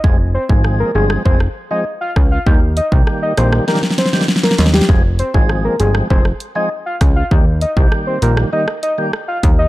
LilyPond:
<<
  \new Staff \with { instrumentName = "Soft synth lead" } { \time 4/4 \key f \minor \tempo 4 = 99 r8 c''16 r8 bes'16 aes'16 r16 c''16 r8 ees''16 r16 f''16 r16 f''16 | r8 ees''16 r8 ees''16 c''16 r16 bes'16 r16 c''16 r8 bes'16 r16 g'16 | r8 c''16 r8 bes'16 aes'16 r16 c''16 r8 ees''16 r16 f''16 r16 f''16 | r8 ees''16 r8 c''16 bes'16 r16 ees''16 r16 ees''16 r8 f''16 r16 ees''16 | }
  \new Staff \with { instrumentName = "Tonewheel organ" } { \time 4/4 \key f \minor <f aes c' aes'>16 r8 <f aes c' aes'>8. <f aes c' aes'>8 aes'16 r8 <f aes c' aes'>16 r4 | <ees g bes g'>16 r8 <ees g bes g'>8. <ees g bes g'>8 <ees g bes g'>16 r8 <ees g bes g'>16 r4 | <f aes c' aes'>16 r8 <f aes c' aes'>8. <f aes c' aes'>8 <f aes c' aes'>16 r8 <f aes c' aes'>16 r4 | <ees g bes g'>16 r8 <ees g bes g'>8. <ees g bes g'>8 <ees g bes g'>16 r8 <ees g bes g'>16 r4 | }
  \new Staff \with { instrumentName = "Analog synth bass" } { \clef bass \time 4/4 \key f \minor f,,8. aes,,8. g,,8 f,,8 r4 des,8 | ees,8. c,16 r8 bes,,8 r4. ees,8 | f,,8. aes,,8. g,,8 f,,8 r4 des,8 | ees,8. c,16 r8 bes,,8 r4. ees,8 | }
  \new DrumStaff \with { instrumentName = "Drums" } \drummode { \time 4/4 bd8. bd16 ss8. ss16 bd16 ss8. r8 <bd ss>8 | bd8 hh16 bd16 ss8 <hh ss>16 ss16 sn32 sn32 sn32 sn32 <hh sn>32 sn32 sn32 sn32 sn32 sn32 sn32 sn32 <hh sn>32 sn32 sn32 sn32 | bd8 hh16 bd16 ss8 hh16 ss16 bd16 ss16 hh8 r8 <hh bd ss>8 | bd8 hh16 bd16 ss8 hh16 ss16 r16 ss16 hh8 ss8 <hh bd>8 | }
>>